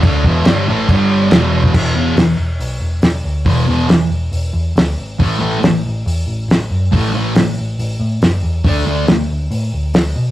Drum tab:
CC |x---x---x---x---|x---------------|----------------|----------------|
HH |----------------|----o---o---o---|o---o---o---o---|o---o---o---o---|
SD |----o-------o---|----o-------o---|----o-------o---|----o-------o---|
BD |o-o-----o------o|o---------------|o---------------|o---------------|

CC |----------------|----------------|
HH |o---o---o---o---|o---o---o---o---|
SD |----o-------o---|----o-------o---|
BD |o---------------|o---------------|